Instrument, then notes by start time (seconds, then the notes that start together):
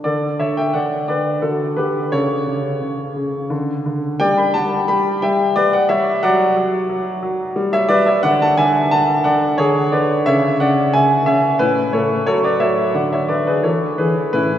grand piano
0.04 D3 A4 D5
0.40 D3 C#5 E5
0.57 E5 G5
0.73 D3 D5 F#5
1.08 D3 B4 D5
1.42 D3 F#4 A4
1.77 D3 G4 B4
2.12 C#3 A4 C#5
2.47 C#3
2.82 C#3
3.16 C#3
3.50 D3
3.86 D3
4.20 G3 D5 G5
4.37 G5 B5
4.54 G3 F#5 A5
4.88 G3 G5 B5
5.22 G3 E5 G5
5.56 G3 B4 D5
5.73 D5 F#5
5.89 G3 C#5 E5
6.23 F#3 D5 F#5
6.57 F#3
6.89 F#3
7.23 F#3
7.56 G3
7.73 C#5 E5
7.89 G3 B4 D5
8.06 C#5 E5
8.23 D3 D5 F#5
8.42 F#5 A5
8.57 D3 E5 G#5
8.91 D3 F#5 A5
9.24 D3 D5 F#5
9.58 D3 G#4 C#5
9.92 D3 B4 D5
10.26 C#3 C#5 E5
10.60 C#3 D5 F#5
10.93 C#3 E5 G#5
11.26 C#3 C#5 E5
11.59 A2 E4 B4
11.93 A2 A4 C#5
12.27 F#3 A4 C#5
12.45 B4 D5
12.60 F#3 C#5 E5
12.94 D3 D5 F#5
13.13 C#5 E5
13.28 D3 B4 D5
13.47 G#4 B4
13.63 E3 A4 C#5
13.98 E3 G#4 B4
14.33 A2 C#4 E4 B4